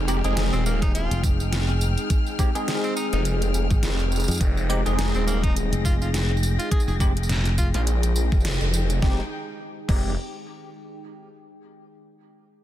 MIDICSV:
0, 0, Header, 1, 8, 480
1, 0, Start_track
1, 0, Key_signature, -4, "minor"
1, 0, Tempo, 576923
1, 1748, Time_signature, 4, 2, 24, 8
1, 10513, End_track
2, 0, Start_track
2, 0, Title_t, "String section"
2, 0, Program_c, 0, 48
2, 0, Note_on_c, 0, 68, 79
2, 0, Note_on_c, 0, 79, 71
2, 0, Note_on_c, 0, 89, 88
2, 3661, Note_off_c, 0, 89, 0
2, 3670, Note_on_c, 0, 94, 87
2, 7476, Note_off_c, 0, 68, 0
2, 7476, Note_off_c, 0, 79, 0
2, 7503, Note_off_c, 0, 94, 0
2, 7513, Note_on_c, 0, 63, 72
2, 7513, Note_on_c, 0, 79, 79
2, 7514, Note_on_c, 0, 68, 67
2, 7734, Note_off_c, 0, 63, 0
2, 7734, Note_off_c, 0, 79, 0
2, 7735, Note_off_c, 0, 68, 0
2, 10513, End_track
3, 0, Start_track
3, 0, Title_t, "Ambient pad"
3, 0, Program_c, 1, 92
3, 0, Note_on_c, 1, 63, 73
3, 0, Note_on_c, 1, 68, 85
3, 0, Note_on_c, 1, 79, 78
3, 349, Note_off_c, 1, 79, 0
3, 7500, Note_off_c, 1, 63, 0
3, 7507, Note_off_c, 1, 68, 0
3, 7510, Note_on_c, 1, 63, 77
3, 7591, Note_on_c, 1, 68, 83
3, 7669, Note_on_c, 1, 79, 84
3, 9395, Note_off_c, 1, 68, 0
3, 9396, Note_off_c, 1, 63, 0
3, 9397, Note_off_c, 1, 79, 0
3, 10513, End_track
4, 0, Start_track
4, 0, Title_t, "Tenor saxophone"
4, 0, Program_c, 2, 66
4, 442, Note_on_c, 2, 60, 90
4, 526, Note_off_c, 2, 60, 0
4, 549, Note_on_c, 2, 58, 94
4, 657, Note_off_c, 2, 58, 0
4, 685, Note_on_c, 2, 63, 89
4, 768, Note_off_c, 2, 63, 0
4, 787, Note_on_c, 2, 65, 95
4, 1006, Note_off_c, 2, 65, 0
4, 2364, Note_on_c, 2, 60, 96
4, 2447, Note_off_c, 2, 60, 0
4, 2466, Note_on_c, 2, 63, 90
4, 2554, Note_off_c, 2, 63, 0
4, 2603, Note_on_c, 2, 63, 77
4, 2670, Note_off_c, 2, 63, 0
4, 4284, Note_on_c, 2, 60, 95
4, 4367, Note_off_c, 2, 60, 0
4, 4386, Note_on_c, 2, 58, 97
4, 4496, Note_off_c, 2, 58, 0
4, 4523, Note_on_c, 2, 63, 91
4, 4607, Note_off_c, 2, 63, 0
4, 4866, Note_on_c, 2, 65, 88
4, 4954, Note_off_c, 2, 65, 0
4, 5004, Note_on_c, 2, 65, 81
4, 5071, Note_off_c, 2, 65, 0
4, 5482, Note_on_c, 2, 65, 99
4, 5566, Note_off_c, 2, 65, 0
4, 5585, Note_on_c, 2, 68, 94
4, 5673, Note_off_c, 2, 68, 0
4, 5721, Note_on_c, 2, 68, 80
4, 5789, Note_off_c, 2, 68, 0
4, 6310, Note_on_c, 2, 65, 89
4, 6396, Note_off_c, 2, 65, 0
4, 6444, Note_on_c, 2, 65, 78
4, 6511, Note_off_c, 2, 65, 0
4, 10513, End_track
5, 0, Start_track
5, 0, Title_t, "Tine electric piano"
5, 0, Program_c, 3, 4
5, 66, Note_on_c, 3, 56, 102
5, 66, Note_on_c, 3, 60, 93
5, 66, Note_on_c, 3, 63, 95
5, 66, Note_on_c, 3, 67, 117
5, 152, Note_off_c, 3, 60, 0
5, 153, Note_off_c, 3, 56, 0
5, 153, Note_off_c, 3, 63, 0
5, 153, Note_off_c, 3, 67, 0
5, 203, Note_on_c, 3, 60, 89
5, 203, Note_on_c, 3, 63, 89
5, 203, Note_on_c, 3, 68, 112
5, 204, Note_on_c, 3, 56, 100
5, 1963, Note_off_c, 3, 56, 0
5, 1963, Note_off_c, 3, 60, 0
5, 1963, Note_off_c, 3, 63, 0
5, 1963, Note_off_c, 3, 68, 0
5, 1987, Note_on_c, 3, 56, 102
5, 1987, Note_on_c, 3, 60, 91
5, 1987, Note_on_c, 3, 63, 93
5, 1987, Note_on_c, 3, 67, 109
5, 2073, Note_off_c, 3, 56, 0
5, 2073, Note_off_c, 3, 60, 0
5, 2073, Note_off_c, 3, 63, 0
5, 2073, Note_off_c, 3, 67, 0
5, 2123, Note_on_c, 3, 60, 92
5, 2124, Note_on_c, 3, 56, 97
5, 2124, Note_on_c, 3, 63, 92
5, 2124, Note_on_c, 3, 68, 112
5, 3883, Note_off_c, 3, 56, 0
5, 3883, Note_off_c, 3, 60, 0
5, 3883, Note_off_c, 3, 63, 0
5, 3883, Note_off_c, 3, 68, 0
5, 3906, Note_on_c, 3, 56, 101
5, 3906, Note_on_c, 3, 63, 96
5, 3907, Note_on_c, 3, 60, 96
5, 3907, Note_on_c, 3, 67, 116
5, 3993, Note_off_c, 3, 56, 0
5, 3993, Note_off_c, 3, 60, 0
5, 3993, Note_off_c, 3, 63, 0
5, 3993, Note_off_c, 3, 67, 0
5, 4041, Note_on_c, 3, 56, 100
5, 4041, Note_on_c, 3, 63, 89
5, 4042, Note_on_c, 3, 60, 88
5, 4042, Note_on_c, 3, 68, 110
5, 5802, Note_off_c, 3, 56, 0
5, 5802, Note_off_c, 3, 60, 0
5, 5802, Note_off_c, 3, 63, 0
5, 5802, Note_off_c, 3, 68, 0
5, 5827, Note_on_c, 3, 56, 105
5, 5828, Note_on_c, 3, 60, 95
5, 5828, Note_on_c, 3, 63, 95
5, 5828, Note_on_c, 3, 67, 114
5, 5913, Note_off_c, 3, 56, 0
5, 5913, Note_off_c, 3, 60, 0
5, 5913, Note_off_c, 3, 67, 0
5, 5914, Note_off_c, 3, 63, 0
5, 7507, Note_on_c, 3, 56, 89
5, 7507, Note_on_c, 3, 63, 82
5, 7507, Note_on_c, 3, 67, 95
5, 7508, Note_on_c, 3, 60, 82
5, 7653, Note_off_c, 3, 56, 0
5, 7653, Note_off_c, 3, 60, 0
5, 7653, Note_off_c, 3, 63, 0
5, 7653, Note_off_c, 3, 67, 0
5, 8225, Note_on_c, 3, 56, 91
5, 8225, Note_on_c, 3, 60, 83
5, 8225, Note_on_c, 3, 63, 84
5, 8225, Note_on_c, 3, 67, 102
5, 8411, Note_off_c, 3, 56, 0
5, 8411, Note_off_c, 3, 60, 0
5, 8411, Note_off_c, 3, 63, 0
5, 8411, Note_off_c, 3, 67, 0
5, 10513, End_track
6, 0, Start_track
6, 0, Title_t, "Detuned saw bass"
6, 0, Program_c, 4, 39
6, 0, Note_on_c, 4, 29, 93
6, 181, Note_off_c, 4, 29, 0
6, 202, Note_on_c, 4, 29, 100
6, 290, Note_off_c, 4, 29, 0
6, 306, Note_on_c, 4, 29, 98
6, 421, Note_off_c, 4, 29, 0
6, 444, Note_on_c, 4, 27, 95
6, 902, Note_off_c, 4, 27, 0
6, 2604, Note_on_c, 4, 29, 98
6, 3062, Note_off_c, 4, 29, 0
6, 3187, Note_on_c, 4, 29, 103
6, 3541, Note_off_c, 4, 29, 0
6, 3667, Note_on_c, 4, 29, 92
6, 4021, Note_off_c, 4, 29, 0
6, 4045, Note_on_c, 4, 29, 99
6, 4132, Note_off_c, 4, 29, 0
6, 4148, Note_on_c, 4, 29, 99
6, 4262, Note_off_c, 4, 29, 0
6, 4282, Note_on_c, 4, 27, 98
6, 4741, Note_off_c, 4, 27, 0
6, 6445, Note_on_c, 4, 34, 101
6, 6902, Note_off_c, 4, 34, 0
6, 6923, Note_on_c, 4, 29, 99
6, 7141, Note_off_c, 4, 29, 0
6, 7163, Note_on_c, 4, 29, 100
6, 7491, Note_off_c, 4, 29, 0
6, 7508, Note_on_c, 4, 29, 94
6, 7654, Note_off_c, 4, 29, 0
6, 8227, Note_on_c, 4, 29, 102
6, 8451, Note_off_c, 4, 29, 0
6, 10513, End_track
7, 0, Start_track
7, 0, Title_t, "Fingered electric bass"
7, 0, Program_c, 5, 33
7, 924, Note_on_c, 5, 29, 94
7, 1622, Note_off_c, 5, 29, 0
7, 3083, Note_on_c, 5, 32, 95
7, 3171, Note_off_c, 5, 32, 0
7, 3563, Note_on_c, 5, 41, 99
7, 3651, Note_off_c, 5, 41, 0
7, 4762, Note_on_c, 5, 29, 98
7, 5461, Note_off_c, 5, 29, 0
7, 5722, Note_on_c, 5, 29, 100
7, 6421, Note_off_c, 5, 29, 0
7, 10513, End_track
8, 0, Start_track
8, 0, Title_t, "Drums"
8, 67, Note_on_c, 9, 54, 72
8, 151, Note_off_c, 9, 54, 0
8, 203, Note_on_c, 9, 42, 34
8, 203, Note_on_c, 9, 54, 32
8, 286, Note_off_c, 9, 42, 0
8, 286, Note_off_c, 9, 54, 0
8, 307, Note_on_c, 9, 38, 126
8, 307, Note_on_c, 9, 42, 78
8, 307, Note_on_c, 9, 54, 45
8, 390, Note_off_c, 9, 38, 0
8, 390, Note_off_c, 9, 42, 0
8, 390, Note_off_c, 9, 54, 0
8, 445, Note_on_c, 9, 54, 23
8, 528, Note_off_c, 9, 54, 0
8, 549, Note_on_c, 9, 54, 78
8, 632, Note_off_c, 9, 54, 0
8, 683, Note_on_c, 9, 36, 104
8, 685, Note_on_c, 9, 40, 40
8, 685, Note_on_c, 9, 42, 55
8, 685, Note_on_c, 9, 54, 32
8, 767, Note_off_c, 9, 36, 0
8, 768, Note_off_c, 9, 40, 0
8, 768, Note_off_c, 9, 42, 0
8, 768, Note_off_c, 9, 54, 0
8, 790, Note_on_c, 9, 42, 77
8, 790, Note_on_c, 9, 54, 44
8, 874, Note_off_c, 9, 42, 0
8, 874, Note_off_c, 9, 54, 0
8, 927, Note_on_c, 9, 42, 51
8, 927, Note_on_c, 9, 54, 23
8, 1010, Note_off_c, 9, 42, 0
8, 1010, Note_off_c, 9, 54, 0
8, 1028, Note_on_c, 9, 36, 104
8, 1028, Note_on_c, 9, 54, 75
8, 1111, Note_off_c, 9, 36, 0
8, 1111, Note_off_c, 9, 54, 0
8, 1166, Note_on_c, 9, 54, 33
8, 1249, Note_off_c, 9, 54, 0
8, 1269, Note_on_c, 9, 38, 118
8, 1269, Note_on_c, 9, 42, 78
8, 1269, Note_on_c, 9, 54, 43
8, 1352, Note_off_c, 9, 38, 0
8, 1352, Note_off_c, 9, 42, 0
8, 1352, Note_off_c, 9, 54, 0
8, 1404, Note_on_c, 9, 40, 51
8, 1404, Note_on_c, 9, 54, 20
8, 1488, Note_off_c, 9, 40, 0
8, 1488, Note_off_c, 9, 54, 0
8, 1507, Note_on_c, 9, 54, 79
8, 1590, Note_off_c, 9, 54, 0
8, 1644, Note_on_c, 9, 42, 35
8, 1644, Note_on_c, 9, 54, 32
8, 1727, Note_off_c, 9, 42, 0
8, 1727, Note_off_c, 9, 54, 0
8, 1747, Note_on_c, 9, 42, 76
8, 1747, Note_on_c, 9, 54, 44
8, 1748, Note_on_c, 9, 36, 112
8, 1830, Note_off_c, 9, 42, 0
8, 1830, Note_off_c, 9, 54, 0
8, 1831, Note_off_c, 9, 36, 0
8, 1884, Note_on_c, 9, 54, 23
8, 1968, Note_off_c, 9, 54, 0
8, 1988, Note_on_c, 9, 36, 105
8, 1988, Note_on_c, 9, 54, 77
8, 2071, Note_off_c, 9, 36, 0
8, 2071, Note_off_c, 9, 54, 0
8, 2125, Note_on_c, 9, 42, 36
8, 2125, Note_on_c, 9, 54, 34
8, 2209, Note_off_c, 9, 42, 0
8, 2209, Note_off_c, 9, 54, 0
8, 2230, Note_on_c, 9, 38, 118
8, 2230, Note_on_c, 9, 42, 79
8, 2230, Note_on_c, 9, 54, 46
8, 2313, Note_off_c, 9, 38, 0
8, 2313, Note_off_c, 9, 42, 0
8, 2313, Note_off_c, 9, 54, 0
8, 2364, Note_on_c, 9, 54, 23
8, 2448, Note_off_c, 9, 54, 0
8, 2468, Note_on_c, 9, 54, 79
8, 2551, Note_off_c, 9, 54, 0
8, 2603, Note_on_c, 9, 40, 41
8, 2603, Note_on_c, 9, 42, 54
8, 2603, Note_on_c, 9, 54, 36
8, 2686, Note_off_c, 9, 40, 0
8, 2686, Note_off_c, 9, 42, 0
8, 2686, Note_off_c, 9, 54, 0
8, 2706, Note_on_c, 9, 42, 81
8, 2706, Note_on_c, 9, 54, 45
8, 2789, Note_off_c, 9, 42, 0
8, 2789, Note_off_c, 9, 54, 0
8, 2845, Note_on_c, 9, 42, 54
8, 2845, Note_on_c, 9, 54, 23
8, 2928, Note_off_c, 9, 42, 0
8, 2928, Note_off_c, 9, 54, 0
8, 2947, Note_on_c, 9, 54, 75
8, 3030, Note_off_c, 9, 54, 0
8, 3083, Note_on_c, 9, 36, 108
8, 3083, Note_on_c, 9, 54, 33
8, 3166, Note_off_c, 9, 36, 0
8, 3166, Note_off_c, 9, 54, 0
8, 3186, Note_on_c, 9, 38, 112
8, 3186, Note_on_c, 9, 42, 72
8, 3186, Note_on_c, 9, 54, 46
8, 3269, Note_off_c, 9, 38, 0
8, 3269, Note_off_c, 9, 42, 0
8, 3269, Note_off_c, 9, 54, 0
8, 3322, Note_on_c, 9, 54, 22
8, 3405, Note_off_c, 9, 54, 0
8, 3426, Note_on_c, 9, 54, 36
8, 3460, Note_off_c, 9, 54, 0
8, 3460, Note_on_c, 9, 54, 39
8, 3492, Note_off_c, 9, 54, 0
8, 3492, Note_on_c, 9, 54, 43
8, 3527, Note_off_c, 9, 54, 0
8, 3527, Note_on_c, 9, 54, 51
8, 3561, Note_off_c, 9, 54, 0
8, 3561, Note_on_c, 9, 42, 36
8, 3561, Note_on_c, 9, 54, 53
8, 3589, Note_off_c, 9, 54, 0
8, 3589, Note_on_c, 9, 54, 61
8, 3614, Note_off_c, 9, 54, 0
8, 3614, Note_on_c, 9, 54, 64
8, 3641, Note_off_c, 9, 54, 0
8, 3641, Note_on_c, 9, 54, 67
8, 3645, Note_off_c, 9, 42, 0
8, 3666, Note_on_c, 9, 36, 113
8, 3667, Note_off_c, 9, 54, 0
8, 3667, Note_on_c, 9, 42, 75
8, 3667, Note_on_c, 9, 54, 46
8, 3750, Note_off_c, 9, 36, 0
8, 3750, Note_off_c, 9, 42, 0
8, 3750, Note_off_c, 9, 54, 0
8, 3804, Note_on_c, 9, 54, 23
8, 3888, Note_off_c, 9, 54, 0
8, 3908, Note_on_c, 9, 54, 74
8, 3991, Note_off_c, 9, 54, 0
8, 4045, Note_on_c, 9, 42, 35
8, 4045, Note_on_c, 9, 54, 35
8, 4128, Note_off_c, 9, 42, 0
8, 4128, Note_off_c, 9, 54, 0
8, 4149, Note_on_c, 9, 38, 121
8, 4149, Note_on_c, 9, 42, 84
8, 4149, Note_on_c, 9, 54, 46
8, 4232, Note_off_c, 9, 38, 0
8, 4232, Note_off_c, 9, 42, 0
8, 4232, Note_off_c, 9, 54, 0
8, 4286, Note_on_c, 9, 54, 23
8, 4369, Note_off_c, 9, 54, 0
8, 4389, Note_on_c, 9, 54, 83
8, 4473, Note_off_c, 9, 54, 0
8, 4522, Note_on_c, 9, 36, 98
8, 4524, Note_on_c, 9, 42, 55
8, 4605, Note_off_c, 9, 36, 0
8, 4607, Note_off_c, 9, 42, 0
8, 4630, Note_on_c, 9, 42, 82
8, 4630, Note_on_c, 9, 54, 46
8, 4713, Note_off_c, 9, 42, 0
8, 4713, Note_off_c, 9, 54, 0
8, 4765, Note_on_c, 9, 42, 55
8, 4765, Note_on_c, 9, 54, 23
8, 4848, Note_off_c, 9, 42, 0
8, 4848, Note_off_c, 9, 54, 0
8, 4867, Note_on_c, 9, 36, 98
8, 4870, Note_on_c, 9, 54, 81
8, 4950, Note_off_c, 9, 36, 0
8, 4953, Note_off_c, 9, 54, 0
8, 5006, Note_on_c, 9, 54, 34
8, 5090, Note_off_c, 9, 54, 0
8, 5110, Note_on_c, 9, 38, 111
8, 5110, Note_on_c, 9, 42, 78
8, 5110, Note_on_c, 9, 54, 45
8, 5193, Note_off_c, 9, 38, 0
8, 5193, Note_off_c, 9, 42, 0
8, 5193, Note_off_c, 9, 54, 0
8, 5246, Note_on_c, 9, 40, 54
8, 5299, Note_on_c, 9, 54, 22
8, 5330, Note_off_c, 9, 40, 0
8, 5350, Note_off_c, 9, 54, 0
8, 5350, Note_on_c, 9, 54, 82
8, 5434, Note_off_c, 9, 54, 0
8, 5488, Note_on_c, 9, 42, 37
8, 5488, Note_on_c, 9, 54, 34
8, 5571, Note_off_c, 9, 42, 0
8, 5571, Note_off_c, 9, 54, 0
8, 5587, Note_on_c, 9, 36, 115
8, 5589, Note_on_c, 9, 42, 84
8, 5658, Note_on_c, 9, 54, 44
8, 5670, Note_off_c, 9, 36, 0
8, 5672, Note_off_c, 9, 42, 0
8, 5726, Note_off_c, 9, 54, 0
8, 5726, Note_on_c, 9, 54, 23
8, 5809, Note_off_c, 9, 54, 0
8, 5827, Note_on_c, 9, 36, 102
8, 5828, Note_on_c, 9, 54, 73
8, 5910, Note_off_c, 9, 36, 0
8, 5912, Note_off_c, 9, 54, 0
8, 5964, Note_on_c, 9, 42, 40
8, 6018, Note_on_c, 9, 54, 33
8, 6047, Note_off_c, 9, 42, 0
8, 6069, Note_off_c, 9, 54, 0
8, 6069, Note_on_c, 9, 38, 119
8, 6069, Note_on_c, 9, 42, 83
8, 6069, Note_on_c, 9, 54, 47
8, 6152, Note_off_c, 9, 38, 0
8, 6152, Note_off_c, 9, 42, 0
8, 6152, Note_off_c, 9, 54, 0
8, 6202, Note_on_c, 9, 42, 39
8, 6202, Note_on_c, 9, 54, 23
8, 6286, Note_off_c, 9, 42, 0
8, 6286, Note_off_c, 9, 54, 0
8, 6306, Note_on_c, 9, 54, 81
8, 6307, Note_on_c, 9, 36, 63
8, 6389, Note_off_c, 9, 54, 0
8, 6390, Note_off_c, 9, 36, 0
8, 6442, Note_on_c, 9, 40, 46
8, 6442, Note_on_c, 9, 42, 58
8, 6442, Note_on_c, 9, 54, 35
8, 6525, Note_off_c, 9, 40, 0
8, 6525, Note_off_c, 9, 42, 0
8, 6525, Note_off_c, 9, 54, 0
8, 6548, Note_on_c, 9, 42, 84
8, 6548, Note_on_c, 9, 54, 45
8, 6631, Note_off_c, 9, 42, 0
8, 6631, Note_off_c, 9, 54, 0
8, 6683, Note_on_c, 9, 42, 57
8, 6683, Note_on_c, 9, 54, 23
8, 6766, Note_off_c, 9, 42, 0
8, 6766, Note_off_c, 9, 54, 0
8, 6787, Note_on_c, 9, 54, 79
8, 6870, Note_off_c, 9, 54, 0
8, 6923, Note_on_c, 9, 36, 104
8, 6924, Note_on_c, 9, 54, 14
8, 6993, Note_off_c, 9, 54, 0
8, 6993, Note_on_c, 9, 54, 20
8, 7006, Note_off_c, 9, 36, 0
8, 7029, Note_off_c, 9, 54, 0
8, 7029, Note_on_c, 9, 38, 118
8, 7029, Note_on_c, 9, 42, 82
8, 7029, Note_on_c, 9, 54, 43
8, 7074, Note_off_c, 9, 54, 0
8, 7074, Note_on_c, 9, 54, 26
8, 7112, Note_off_c, 9, 38, 0
8, 7112, Note_off_c, 9, 42, 0
8, 7157, Note_off_c, 9, 54, 0
8, 7164, Note_on_c, 9, 54, 22
8, 7247, Note_off_c, 9, 54, 0
8, 7269, Note_on_c, 9, 54, 80
8, 7352, Note_off_c, 9, 54, 0
8, 7404, Note_on_c, 9, 42, 38
8, 7404, Note_on_c, 9, 54, 34
8, 7487, Note_off_c, 9, 42, 0
8, 7487, Note_off_c, 9, 54, 0
8, 7508, Note_on_c, 9, 36, 116
8, 7509, Note_on_c, 9, 38, 86
8, 7591, Note_off_c, 9, 36, 0
8, 7592, Note_off_c, 9, 38, 0
8, 8226, Note_on_c, 9, 36, 122
8, 8228, Note_on_c, 9, 49, 93
8, 8310, Note_off_c, 9, 36, 0
8, 8312, Note_off_c, 9, 49, 0
8, 10513, End_track
0, 0, End_of_file